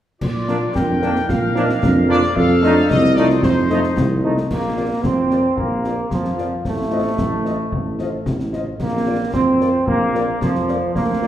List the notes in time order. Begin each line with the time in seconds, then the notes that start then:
0.21 A#2 F4 D5, concert bass drum, crash
0.48 F3 A#3 D4, snare
0.75 F2 D4 A#4 G5, concert bass drum, snare
1.02 F3 A#3 D4 D#4, snare
1.16 snare
1.28 A#2 F4 A#4 F5, concert bass drum, snare
1.55 F3 A#3 D4 D#4, snare
1.69 snare
1.83 F2 D4, concert bass drum, snare
2.08 F3 A#3 D4 F4 D5
2.23 snare
2.36 F2 F4 A4 F5, concert bass drum
2.62 F3 A3 D4 D#4, snare
2.88 C2 C4 A4 D#5, concert bass drum, snare
3.15 F3 A3 D#4 F4 D5, snare
3.30 snare
3.43 F2 D#4 C5, concert bass drum, snare
3.70 F3 A3 D#4, snare
3.84 snare
3.96 C2 D#4, concert bass drum, snare
4.23 F3 A3 D#4
4.38 snare
4.49 A#1 A#3, concert bass drum, snare, crash
4.76 F4 A#4 D5 F5
5.03 F2 C4, concert bass drum, snare
5.30 F4 A#4 D5 F5, snare
5.57 A#1 A#3, concert bass drum
5.84 F4 A#4 D5 F5, snare
6.11 F2 F3, concert bass drum, snare
6.25 snare
6.38 F4 A#4 D5 F5, snare
6.65 A1 A3, concert bass drum, snare
6.91 F4 C5 D#5 F5
7.18 A1, concert bass drum, snare
7.45 F4 C5 D#5 F5, snare
7.72 A1, concert bass drum
7.99 F4 C5 D#5 F5, snare
8.26 A1, concert bass drum, snare
8.40 snare
8.53 F4 C5 D#5 F5, snare
8.80 A#1 A#3, concert bass drum, snare, crash
9.06 F4 A#4 D5 F5
9.34 F2 C4, concert bass drum, snare
9.60 F4 A#4 D5 F5, snare
9.87 A#1 A#3, concert bass drum
10.14 F4 A#4 D5 F5, snare
10.41 F2 F3, concert bass drum, snare
10.55 snare
10.68 F4 A#4 D5 F5, snare
10.95 D2 A#3, concert bass drum, snare
11.22 F4 A#4 D5 F5